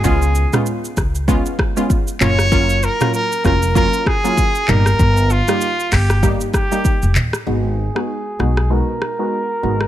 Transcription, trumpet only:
X:1
M:4/4
L:1/8
Q:"Swing 16ths" 1/4=97
K:Abdor
V:1 name="Trumpet"
A2 z4 z d- | d B B B B A2 B- | B F2 =G z G2 z | A4 B4 |]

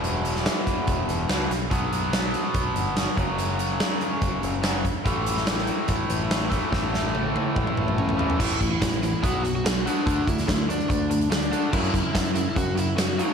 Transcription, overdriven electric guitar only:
X:1
M:4/4
L:1/8
Q:1/4=144
K:Amix
V:1 name="Overdriven electric guitar" clef=bass
[E,,B,,E,]6 [E,,B,,E,] z | [B,,F,B,]6- [B,,F,B,] [F,,C,F,]- | [F,,C,F,]6 [F,,C,F,] z | [A,,E,A,]6- [A,,E,A,] [A,,E,A,] |
[A,,E,A,]6- [A,,E,A,] [A,,E,A,] | [A,,E,A,] [A,,E,] [A,,E,] [A,,E,] [B,,F,B,] [B,,F,] [B,,F,] [B,,F,B,] | [D,A,D] [D,A,] [D,A,] [D,A,] [D,A,] [D,A,] [D,A,] [D,A,D] | [F,,C,F,] [F,,C,] [F,,C,] [F,,C,] [F,,C,] [F,,C,] [F,,C,] [F,,C,F,] |]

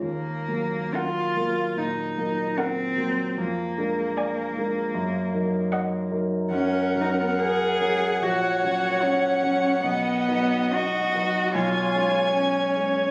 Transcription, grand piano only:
X:1
M:4/4
L:1/8
Q:1/4=74
K:Ebdor
V:1 name="Grand piano"
E,, [G,B,B]2 [G,B,B] B,, [G,B,B]2 [G,B,B] | F,, [A,=DB]2 [A,DB] G,, [G,EB]2 [G,EB] | [K:F#] F,, [F,CA]2 [F,CA] A,,, [F,Cc]2 [F,Cc] | B,,, [F,DB]2 [F,DB] B,,, [G,Cc]2 [G,Cc] |]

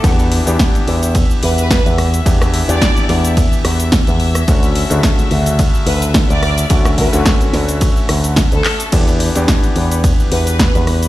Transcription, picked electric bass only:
X:1
M:4/4
L:1/16
Q:"Swing 16ths" 1/4=108
K:Edor
V:1 name="Picked electric bass" clef=bass
E,,3 E,, z2 E,,3 z E,,3 E,,3 | E,,3 E,, z2 E,,3 z E,,3 E,,3 | D,,3 D,, z2 D,,3 z D,,3 D,,3 | D,,3 D,, z2 D,,3 z D,,3 D,, z2 |
E,,3 E,, z2 E,,3 z E,,3 E,,3 |]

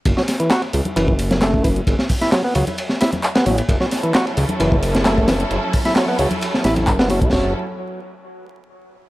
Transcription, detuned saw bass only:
X:1
M:4/4
L:1/16
Q:1/4=132
K:F#m
V:1 name="Detuned saw bass" clef=bass
F,,, z4 z C,, z F,,,6- F,,, z | F,,, z4 z C,, z6 z A,,, z | F,,, z4 z C,, z F,,,6- F,,, z | F,,, z4 z C,, z3 A,,,2 F,,,3 C,, |
F,,,2 z12 z2 |]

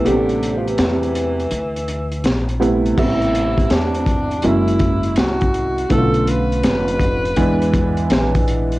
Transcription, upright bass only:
X:1
M:4/4
L:1/8
Q:"Swing 16ths" 1/4=82
K:Am
V:1 name="Upright bass" clef=bass
A,,,2 E,,2 D,,2 _B,,,2 | A,,,2 E,,2 ^F,,,2 C,,2 | B,,,2 F,,,2 E,,2 _B,,,2 |]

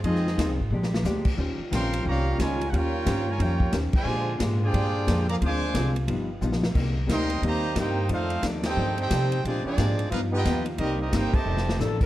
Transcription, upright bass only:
X:1
M:4/4
L:1/8
Q:"Swing" 1/4=179
K:Bb
V:1 name="Upright bass" clef=bass
F,,2 (3E,, C,, _A,,, B,,,2 D,,2 | E,, z B,,,2 C,,2 _D,,2 | E,,2 G,,2 F,,2 E,, z | B,,2 _A,,2 G,,2 F,,2 |
D,,2 C,,2 G,,,2 ^A,,,2 | C,,2 D,,2 E,,2 G,,2 | F,,2 E,,2 G,,2 C,2 | B,, z _A,,2 G,,2 ^D,,2 |
C,,2 G,,, z F,,,2 A,,,2 |]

